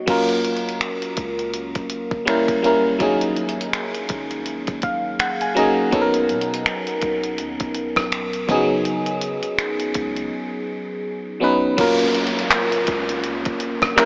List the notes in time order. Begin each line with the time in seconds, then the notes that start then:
0.06 F#1 F#3 A#3 C#4 F4, kick, closed hi-hat, crash
0.10 A#4
0.29 closed hi-hat
0.45 closed hi-hat
0.57 closed hi-hat
0.69 closed hi-hat
0.81 finger snap, closed hi-hat
1.02 closed hi-hat
1.17 C#2, kick, closed hi-hat
1.39 closed hi-hat
1.54 closed hi-hat
1.75 F#1, kick, closed hi-hat
1.90 closed hi-hat
2.11 G1, kick
2.25 G3 A#3 C#4 E4 A#4, finger snap, closed hi-hat
2.48 G1, kick, closed hi-hat
2.62 G3 A#3 C#4 E4, closed hi-hat
2.66 A#4
2.99 G#1 F#3 A#3 C#4 D#4, kick, closed hi-hat
3.03 G#4
3.21 closed hi-hat
3.36 closed hi-hat
3.49 closed hi-hat
3.61 closed hi-hat
3.73 finger snap, closed hi-hat
3.95 closed hi-hat
4.09 G#1, kick, closed hi-hat
4.31 closed hi-hat
4.46 closed hi-hat
4.67 G#1, kick, closed hi-hat
4.82 F5, kick, closed hi-hat
5.19 F#5, finger snap, closed hi-hat
5.41 G#5, closed hi-hat
5.55 F#3 A#3 C#4 D#4 G#4 A#5, closed hi-hat
5.91 B1 F#3 B3 C#4 D#4 A4, kick, closed hi-hat
6.01 A#4
6.14 closed hi-hat
6.29 B2, closed hi-hat
6.41 closed hi-hat
6.54 closed hi-hat
6.66 finger snap, closed hi-hat
6.87 closed hi-hat
7.02 B1, kick, closed hi-hat
7.24 closed hi-hat
7.38 D#2, closed hi-hat
7.60 B1, kick, closed hi-hat
7.75 closed hi-hat
7.96 B1, kick, cross-stick
8.12 finger snap, closed hi-hat
8.33 closed hi-hat
8.47 C#3 F3 B3 C#4 D#4 G#4, kick, closed hi-hat
8.54 F#3
8.85 closed hi-hat
9.06 closed hi-hat
9.21 closed hi-hat
9.43 closed hi-hat
9.58 finger snap, closed hi-hat
9.80 closed hi-hat
9.94 C#2, kick, closed hi-hat
10.16 closed hi-hat
11.40 F#3 B3 C#4 D#4 B4
11.77 F#1 F#3 A#3 C#4 F4, kick, closed hi-hat, crash, downlifter
11.81 A#4
11.99 closed hi-hat
12.15 closed hi-hat
12.27 closed hi-hat
12.39 closed hi-hat
12.51 clap, closed hi-hat
12.72 closed hi-hat
12.87 C#2, kick, closed hi-hat
13.09 closed hi-hat
13.24 closed hi-hat
13.45 F#1, kick, closed hi-hat
13.60 closed hi-hat
13.82 G1, kick, cross-stick
13.96 G3 A#3 C#4 E4 A#4, clap, closed hi-hat